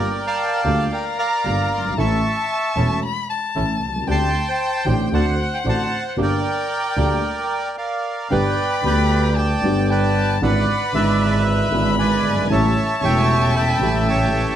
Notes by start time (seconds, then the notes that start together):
Already playing: A#4 D5 G5
0.27 D5 F5 A5
0.64 D2 D3 G3 A#3 F4 G4
0.92 A#4 D5 G5 A#5
1.19 D5 F5 A#5
1.44 G1 G2 D3 G3 A#3 F4 G4
1.72 G1 C6
1.78 F#1
1.85 G1
1.90 G#1
1.97 A1 A2 E3 A3 C#4 E4 A4 E5 A5 C#6
2.76 E1 E2 E3 A3 C#4 E4 A4
3.03 B5
3.30 A5
3.55 A1 A2 E3 A3 C#4 E4 A4
3.82 C2
3.89 B1
3.96 C2
4.02 C#2
4.07 D2 D3 A3 C4 D4 G4 G5 A5
4.11 G5 C6
4.49 C5 A5
4.86 A1 A2 D3 A3 C4 D4 G4 G5
5.12 D2 D3 A3 C4 D4 F#4 C5 F#5 A5
5.41 F#5
5.54 G5
5.64 A1 A2 D3 A3 C4 D4 F#4
5.69 C5 F#5 A5
6.08 F#5
6.16 G1 G2 D3 G3 A#3 D4 G4 G5
6.22 A#4 D5 G5
6.96 D2 D3 G3 A#3 D4 G4
7.78 A#4 D5 F5
8.30 G1 G2 D3 G3 B3 D4 G4 B4 D5 G5 B5
8.82 D2 D3 G3 B3 D4 G4 B5
8.86 G4 D5 G5
9.37 D5 G5 A5
9.61 G1 G2 D3 G3 B3 D4 G4
9.65 G4
9.90 B4 D5 G5 A5
10.41 G#1 G#2 D3 G#3 B3 D4 E4 B4 D5 F#5 B5
10.92 G#1 G#2 D3 G#3 B3 D4 E4 B4 E5
10.97 E4
11.47 B5
11.70 G#1 G#2 D3 G#3 B3 D4 E4
11.74 E4
11.99 B4 D5 G#5
12.26 G1
12.32 F#1
12.38 G1
12.44 G#1
12.50 A1 A2 C#3 G3 A3 C#4 E4 G4 C#5 E5 A5
13.01 E1 E2 C#3 G3 A3 C#4 G4 E5 C#6
13.05 E4 G5
13.55 E5 G5 B5
13.79 A1 A2 C#3 G3 A3 C#4 E4 G4
14.08 C#5 E5 A5